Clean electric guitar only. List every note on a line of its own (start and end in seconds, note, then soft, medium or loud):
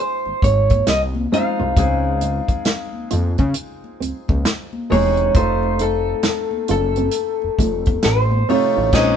0.00 0.44 C5 medium
0.44 0.85 C#5 medium
0.89 1.01 D#5 loud
1.34 3.08 F5 loud
4.92 5.36 C#5 medium
5.36 5.82 C5 medium
5.81 6.70 A4 medium
6.71 8.08 A4 medium
8.05 8.50 C5 loud
8.50 8.94 C#5 medium
8.94 9.16 D#5 medium